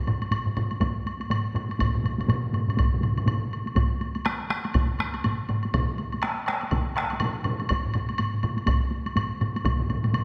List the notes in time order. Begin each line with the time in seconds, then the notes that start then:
0.07 taiko low-mid, taiko high, high woodblock
0.22 taiko high, high woodblock
0.31 taiko low-mid, taiko high, high woodblock
0.47 taiko low-mid
0.57 taiko low-mid, taiko high, high woodblock
0.71 taiko high, high woodblock
0.81 taiko, taiko low-mid, taiko high, high woodblock
1.06 taiko high, high woodblock
1.20 taiko high, high woodblock
1.30 taiko low-mid, taiko high, high woodblock
1.54 taiko low-mid, taiko high, high woodblock
1.69 taiko high, high woodblock
1.79 taiko, taiko low-mid, taiko mid, taiko high, high woodblock
1.95 taiko low-mid, taiko mid
2.04 taiko low-mid, taiko mid, taiko high, high woodblock
2.18 taiko low-mid, taiko mid, taiko high, high woodblock
2.28 taiko low-mid, taiko mid, taiko high, high woodblock
2.53 taiko low-mid, taiko mid, taiko high, high woodblock
2.67 taiko low-mid, taiko mid, taiko high, high woodblock
2.77 taiko, taiko low-mid, taiko mid, taiko high, high woodblock
2.94 taiko low-mid, taiko mid
3.01 taiko low-mid, taiko mid, taiko high, high woodblock
3.17 taiko low-mid, taiko mid, taiko high, high woodblock
3.26 taiko low-mid, taiko mid, taiko high, high woodblock
3.53 high woodblock
3.66 taiko high, high woodblock
3.76 taiko, taiko low-mid, taiko high, high woodblock
4.01 taiko high, high woodblock
4.15 taiko high, high woodblock
4.25 taiko rim, taiko high, high woodblock
4.50 taiko rim, taiko high, high woodblock
4.64 taiko high, high woodblock
4.74 taiko, taiko low-mid, taiko high, high woodblock
4.99 taiko rim, taiko high, high woodblock
5.14 taiko high, high woodblock
5.24 taiko low-mid, taiko high, high woodblock
5.49 taiko low-mid, taiko high, high woodblock
5.63 taiko high, high woodblock
5.74 taiko, taiko mid, taiko high, high woodblock
5.98 taiko high, high woodblock
6.12 taiko high, high woodblock
6.22 taiko rim, taiko high, high woodblock
6.46 taiko rim, taiko high, high woodblock
6.61 taiko high, high woodblock
6.71 taiko, taiko mid, taiko high, high woodblock
6.96 taiko rim, high woodblock
7.10 taiko high, high woodblock
7.20 taiko mid, taiko high, high woodblock
7.44 taiko mid, taiko high, high woodblock
7.60 taiko high, high woodblock
7.69 taiko, taiko low-mid, taiko high, high woodblock
7.86 taiko low-mid
7.94 taiko low-mid, taiko high, high woodblock
8.09 taiko high, high woodblock
8.18 taiko low-mid, taiko high, high woodblock
8.34 taiko low-mid
8.43 taiko low-mid, taiko high, high woodblock
8.57 taiko high, high woodblock
8.66 taiko, taiko low-mid, taiko high, high woodblock
8.91 taiko high
9.06 taiko high, high woodblock
9.16 taiko low-mid, taiko high, high woodblock
9.41 taiko low-mid, taiko high, high woodblock
9.56 taiko high, high woodblock
9.65 taiko, taiko low-mid, taiko mid, taiko high, high woodblock
9.79 taiko low-mid, taiko mid
9.89 taiko low-mid, taiko mid, taiko high, high woodblock
10.03 taiko low-mid, taiko mid, taiko high, high woodblock
10.14 taiko low-mid, taiko mid, taiko high, high woodblock